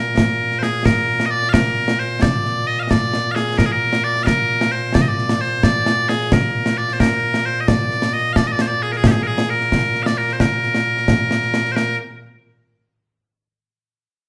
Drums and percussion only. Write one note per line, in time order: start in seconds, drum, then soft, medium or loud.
0.18 concert bass drum soft
0.18 snare medium
0.52 snare soft
0.63 snare medium
0.85 concert bass drum medium
0.85 snare loud
1.20 snare medium
1.43 snare soft
1.54 concert bass drum medium
1.54 snare loud
1.88 snare medium
2.22 concert bass drum medium
2.22 snare loud
2.45 snare soft
2.91 concert bass drum medium
2.91 snare loud
3.14 snare medium
3.36 snare medium
3.48 snare soft
3.59 concert bass drum medium
3.59 snare medium
3.93 snare medium
4.16 snare soft
4.27 concert bass drum medium
4.27 snare medium
4.61 snare medium
4.95 concert bass drum medium
4.95 snare loud
5.18 snare soft
5.29 snare medium
5.63 concert bass drum medium
5.63 snare medium
5.86 snare medium
6.09 snare medium
6.21 snare soft
6.32 concert bass drum medium
6.32 snare loud
6.66 snare medium
6.89 snare soft
7.00 concert bass drum medium
7.00 snare loud
7.34 snare medium
7.68 concert bass drum medium
7.68 snare loud
7.91 snare soft
8.02 snare medium
8.36 concert bass drum medium
8.36 snare medium
8.59 snare loud
8.93 snare soft
9.04 concert bass drum medium
9.04 snare loud
9.38 snare medium
9.61 snare soft
9.72 concert bass drum medium
9.72 snare medium
9.95 snare soft
10.06 snare medium
10.29 snare soft
10.40 concert bass drum medium
10.40 snare loud
10.63 snare soft
10.75 snare medium
10.97 snare soft
11.08 concert bass drum medium
11.08 snare medium
11.31 snare medium
11.42 snare soft
11.54 snare medium
11.65 snare soft
11.77 snare medium